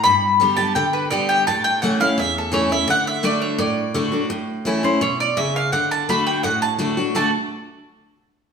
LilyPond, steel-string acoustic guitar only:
\new Staff \with { instrumentName = "Steel-string acoustic guitar" } { \time 4/4 \key d \major \tempo 4 = 169 << { r4 <d g b g'>8 <b g'>8 r4 <d g b g'>4 | r4 <e a cis' e'>8 <cis' e'>8 r4 <e a cis' e'>8 <cis' e'>8 | r4 <d a d' fis'>4 r4 <d a d' fis'>8 <d' fis'>8 | r4 <e a cis' e'>8 <cis' e'>8 r2 |
r4 <d a d' fis'>4 r4 <d a d' fis'>8 <d' fis'>8 | <d a d' fis'>8 r2. r8 | } \\ { g,2 d2 | a,2 e,2 | d2 a,2 | a,2 b,4 cis4 |
d2 a,2 | r1 | } >> }